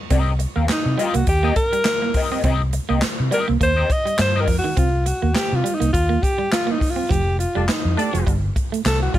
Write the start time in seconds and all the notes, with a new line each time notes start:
0.10 C2 C4 G4 A#4 D#5, kick, closed hi-hat
0.40 muted clean electric guitar stroke, closed hi-hat
0.56 D#2 A#3 C4 G4 A#4 F5
0.68 D#4, muted clean electric guitar stroke, muted fingered electric bass stroke, snare, clap, closed hi-hat
0.86 C3, muted clean electric guitar stroke
0.98 G3 C4 F4 G4 A#4 D#5, closed hi-hat
1.14 C2 A#3 F#4, muted clean electric guitar stroke, closed hi-hat
1.27 D#2 G4, muted clean electric guitar stroke, kick, closed hi-hat
1.43 A#3 C4 G4 A#4 D#5
1.56 A#4, muted clean electric guitar stroke, kick, closed hi-hat
1.73 G3, muted clean electric guitar stroke, closed hi-hat
1.85 muted clean electric guitar stroke, snare, clap, closed hi-hat
2.02 A#3, muted clean electric guitar stroke
2.14 C4 G4 A#4 D#5, muted clean electric guitar stroke, kick, open hi-hat
2.32 C4 G4 A#4 D#5
2.44 C2 C4 G4 A#4 D#5, kick, closed hi-hat
2.73 muted clean electric guitar stroke, closed hi-hat
2.89 C2 A#3 C4 G4 A#4 D#5
3.02 muted clean electric guitar stroke, snare, clap, closed hi-hat
3.19 C3, muted clean electric guitar stroke
3.31 G3 C4 G4 A#4 D#5, closed hi-hat
3.48 C2 A#3, muted clean electric guitar stroke
3.60 D#2 A#3 C5, muted clean electric guitar stroke, kick, closed hi-hat
3.76 C4 G4 A#4 D#5
3.90 D#5, muted clean electric guitar stroke, kick, closed hi-hat
4.06 G3, muted clean electric guitar stroke, closed hi-hat
4.19 G2 C5, muted clean electric guitar stroke, snare, clap, closed hi-hat
4.36 C4 G4 A#4 D#5
4.41 A#4
4.48 F2 F3, muted clean electric guitar stroke, kick, open hi-hat
4.58 F#4
4.64 D#3, muted clean electric guitar stroke
4.77 C2 C4 F4, kick, closed hi-hat
5.06 F#4, muted clean electric guitar stroke, closed hi-hat
5.22 D#2 A#3
5.34 G4, muted clean electric guitar stroke, muted fingered electric bass stroke, snare, clap, closed hi-hat
5.53 C3 F4
5.64 G3, closed hi-hat
5.74 D#4
5.80 C2 A#3, closed hi-hat
5.93 D#2 F4, kick, closed hi-hat
6.09 A#3
6.23 G4, muted clean electric guitar stroke, kick, closed hi-hat
6.38 G3
6.52 F4, snare, clap, closed hi-hat
6.67 A#3
6.72 D#4
6.80 muted clean electric guitar stroke, kick, open hi-hat
6.91 F4
6.96 C4
7.09 F1 F3 G4, kick, closed hi-hat
7.39 F4, muted clean electric guitar stroke, closed hi-hat
7.54 F1 G3 D4 G4 A4 D5
7.69 D#4, muted clean electric guitar stroke, muted fingered electric bass stroke, snare, clap, closed hi-hat
7.85 F2
7.97 A3 D4 G4 A4 D5, closed hi-hat
8.13 F1 F3, closed hi-hat
8.27 G1 G3, kick, closed hi-hat
8.56 muted clean electric guitar stroke, kick, closed hi-hat
8.72 A3, closed hi-hat
8.85 C2 A4, muted clean electric guitar stroke, snare, clap, closed hi-hat
9.02 F#4
9.14 A1 G3 F4, kick, open hi-hat